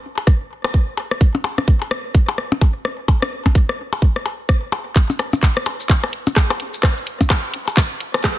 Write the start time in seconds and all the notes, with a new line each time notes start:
0.18 percussion blips
0.27 kick, cross-stick
0.64 cross-stick, percussion blips
0.74 kick
0.97 percussion blips
1.11 cross-stick
1.21 kick
1.35 percussion blips
1.44 percussion blips
1.58 cross-stick, percussion blips
1.68 kick
1.82 percussion blips
1.91 cross-stick
2.15 kick
2.29 percussion blips
2.38 cross-stick
2.52 percussion blips
2.61 kick, percussion blips
2.85 cross-stick
3.08 kick, percussion blips
3.22 cross-stick, percussion blips
3.46 kick, percussion blips
3.55 kick
3.69 cross-stick
3.93 percussion blips
4.02 kick
4.16 cross-stick
4.26 percussion blips
4.49 kick, cross-stick
4.72 percussion blips
4.96 kick, clap, shaker
5.10 percussion blips, shaker
5.19 cross-stick, closed hi-hat, percussion blips
5.33 percussion blips, shaker
5.43 kick, clap, shaker
5.57 cross-stick
5.66 closed hi-hat, percussion blips
5.80 shaker
5.90 kick, clap, shaker
6.04 cross-stick, percussion blips
6.13 closed hi-hat
6.27 closed hi-hat, percussion blips, shaker
6.36 kick, cross-stick, clap, shaker
6.50 cross-stick, percussion blips, shaker
6.60 closed hi-hat
6.74 shaker
6.83 kick, cross-stick, clap, percussion blips, shaker
6.97 shaker
7.07 closed hi-hat
7.21 kick, percussion blips, shaker
7.30 kick, cross-stick, clap, percussion blips, shaker
7.54 closed hi-hat
7.68 percussion blips, shaker
7.77 kick, cross-stick, clap, shaker
8.00 closed hi-hat
8.14 cross-stick, closed hi-hat, percussion blips, shaker
8.24 kick, cross-stick, clap, shaker